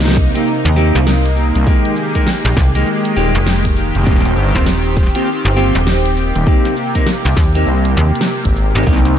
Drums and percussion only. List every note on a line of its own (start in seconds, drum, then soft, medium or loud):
0.00 snare medium
0.05 snare medium
0.05 shaker soft
0.08 snare medium
0.11 snare loud
0.14 kick loud
0.14 snare loud
0.14 shaker medium
0.35 closed hi-hat medium
0.35 shaker soft
0.47 shaker soft
0.65 closed hi-hat medium
0.65 shaker soft
0.77 shaker medium
0.95 snare medium
0.95 closed hi-hat medium
0.95 shaker soft
1.07 snare loud
1.07 shaker soft
1.25 closed hi-hat soft
1.25 shaker soft
1.37 shaker medium
1.55 closed hi-hat medium
1.55 shaker soft
1.67 kick loud
1.67 shaker soft
1.85 closed hi-hat soft
1.85 shaker soft
1.97 shaker medium
2.15 kick medium
2.15 closed hi-hat medium
2.15 shaker soft
2.27 snare loud
2.27 shaker soft
2.45 shaker soft
2.57 kick loud
2.57 snare medium
2.57 shaker medium
2.75 closed hi-hat medium
2.75 shaker soft
2.87 shaker soft
3.05 closed hi-hat medium
3.05 shaker soft
3.17 shaker medium
3.35 closed hi-hat medium
3.35 shaker soft
3.47 snare loud
3.47 shaker soft
3.65 kick medium
3.65 closed hi-hat soft
3.65 shaker soft
3.76 shaker medium
3.95 snare soft
3.95 closed hi-hat medium
3.95 shaker soft
3.98 snare soft
4.01 snare soft
4.04 kick loud
4.04 snare soft
4.07 snare soft
4.07 shaker soft
4.11 snare soft
4.16 snare soft
4.20 snare soft
4.25 snare soft
4.25 closed hi-hat soft
4.25 shaker soft
4.37 shaker medium
4.55 kick medium
4.55 closed hi-hat medium
4.55 shaker soft
4.58 shaker soft
4.61 shaker soft
4.64 snare loud
4.64 shaker soft
4.66 shaker soft
4.85 shaker soft
4.97 kick loud
4.97 snare soft
4.97 shaker medium
5.03 snare soft
5.06 snare soft
5.15 closed hi-hat medium
5.15 shaker soft
5.27 shaker soft
5.45 closed hi-hat medium
5.45 shaker soft
5.57 shaker medium
5.75 snare medium
5.75 closed hi-hat medium
5.75 shaker soft
5.87 snare loud
5.87 shaker soft
6.05 closed hi-hat soft
6.17 shaker medium
6.35 closed hi-hat medium
6.35 shaker soft
6.47 kick loud
6.47 shaker soft
6.65 snare soft
6.65 closed hi-hat soft
6.65 shaker soft
6.77 shaker medium
6.95 kick medium
6.95 closed hi-hat medium
6.95 shaker soft
7.06 snare loud
7.06 shaker soft
7.25 closed hi-hat soft
7.25 shaker soft
7.37 kick loud
7.37 snare medium
7.37 shaker medium
7.55 closed hi-hat medium
7.55 shaker soft
7.67 shaker soft
7.85 closed hi-hat medium
7.85 shaker soft
7.97 shaker medium
8.15 closed hi-hat medium
8.15 shaker soft
8.21 snare loud
8.45 kick medium
8.45 closed hi-hat medium
8.45 shaker soft
8.56 shaker medium
8.75 snare soft
8.75 closed hi-hat medium
8.75 shaker soft
8.83 snare soft
8.87 kick loud
8.87 snare soft
8.87 shaker soft
8.93 snare soft
8.97 snare soft
9.05 snare soft
9.05 closed hi-hat soft
9.05 shaker soft